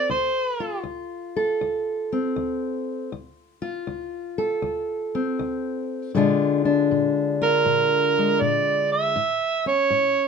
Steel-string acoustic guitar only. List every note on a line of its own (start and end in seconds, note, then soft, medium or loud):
0.00 0.12 C4 medium
0.00 0.60 F4 medium
0.00 1.36 A4 medium
0.10 0.80 D2 medium
0.60 3.61 F4 medium
0.83 1.55 D2 medium
1.36 3.09 A4 medium
1.61 2.31 D2 medium
2.12 3.09 C4 medium
2.36 3.07 D2 medium
3.12 3.83 D2 medium
3.62 6.11 F4 medium
3.87 4.58 D2 medium
4.38 6.11 A4 medium
4.62 5.33 D2 medium
5.15 6.12 C4 medium
5.39 6.09 D2 medium
6.15 6.85 A#2 medium
6.15 9.16 D3 medium
6.15 8.16 G#3 medium
6.15 6.64 D4 medium
6.15 7.40 F4 medium
6.65 9.13 D4 medium
6.91 7.61 A#2 medium
7.42 9.14 F4 medium
7.65 8.36 A#2 medium
8.18 9.14 G#3 medium
8.41 9.11 A#2 medium
9.16 9.86 A2 medium
9.66 10.28 C#4 medium
9.90 10.28 A2 medium